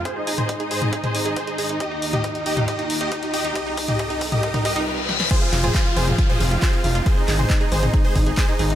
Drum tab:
CC |----------------|----------------|----------------|x---------------|
HH |x-oxxxo-xxoxxxox|x-oxxxoxxxoxxxox|x-oxxxoxxxox----|x-oxxxoxxxoxxxox|
CP |----------------|----------------|----------------|--x-x-------x---|
SD |----------------|----------------|--------------oo|----------------|
T2 |---o---o-o------|---o---o--------|---o---o-o------|---o---o-o------|
BD |o---o---o---o---|o---o---o---o---|o-o-o-o-oooo----|o---o---o---o---|

CC |----------------|
HH |x-oxxxoxxxoxxxox|
CP |--x-x-------x---|
SD |----------------|
T2 |---o---o--o-----|
BD |o---o---o-o-o---|